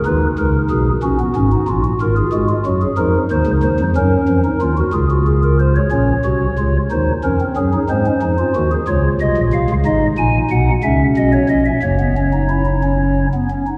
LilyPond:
<<
  \new Staff \with { instrumentName = "Pipe organ" } { \time 6/8 \key fis \major \tempo 4. = 61 << { b'8 ais'8 gis'8 fis'4. | ais'16 gis'16 fis'16 eis'16 fis'16 gis'16 ais'8 c''8 c''8 | ais'4. gis'16 fis'16 gis'16 ais'16 bis'16 cis''16 | cis''4. bis'8 ais'8 gis'8 |
bis'4. cis''8 dis''8 eis''8 | \key fis \mixolydian dis''8 gis''8 fis''8 e''8 dis''16 cis''16 dis''16 e''16 | cis''2~ cis''8 r8 | } \\ { dis'4. cis'16 b16 cis'16 dis'16 eis'16 fis'16 | eis'4. dis'4. | cis'8. dis'16 eis'16 fis'16 eis'4. | cis'8 fis'8 eis'8 dis'8 cis'16 bis16 cis'16 dis'16 |
bis16 cis'16 dis'16 eis'16 fis'16 gis'16 eis'4. | dis'4. cis'4. | ais16 b16 cis'16 dis'16 e'16 dis'16 cis'8. b16 cis'16 dis'16 | } >> }
  \new Staff \with { instrumentName = "Pipe organ" } { \clef bass \time 6/8 \key fis \major <dis, dis>8 <cis, cis>8 <b,, b,>8 <ais,, ais,>8 <gis,, gis,>8 <ais,, ais,>8 | <gis,, gis,>8 <gis, gis>8 <fis, fis>8 <f, f>8 <dis, dis>16 <cis, cis>16 <dis, dis>16 <f, f>16 | <fis, fis>8 <eis, eis>8 <dis, dis>8 <cis, cis>4. | <ais,, ais,>8 <bis,, bis,>8 <cis, cis>8 <dis, dis>8 <eis, eis>8 <fis, fis>8 |
<gis, gis>8 <eis, eis>8 <dis, dis>8 <cis, cis>8 <bis,, bis,>16 <ais,, ais,>16 <bis,, bis,>16 <cis, cis>16 | \key fis \mixolydian <gis,, gis,>8 <ais,, ais,>8 <b,, b,>8 <cis, cis>8 <b,, b,>8 <ais,, ais,>8 | <fis,, fis,>2~ <fis,, fis,>8 r8 | }
>>